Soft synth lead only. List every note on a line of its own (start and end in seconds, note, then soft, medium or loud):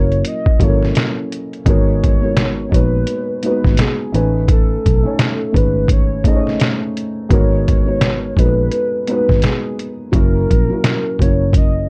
0.00 0.23 C#5 medium
0.27 0.64 D#5 medium
0.63 0.93 C#5 medium
1.68 2.69 C#5 loud
2.74 3.40 B4 medium
3.45 3.76 B4 medium
3.80 4.11 G#4 medium
4.51 5.51 A4 loud
5.57 5.87 B4 medium
5.92 6.22 C#5 medium
6.27 6.58 D#5 medium
7.33 8.33 C#5 loud
8.39 9.04 B4 medium
9.09 9.40 B4 medium
9.44 9.75 G#4 medium
10.15 11.16 A#4 loud
11.21 11.52 C#5 medium
11.57 11.87 D#5 medium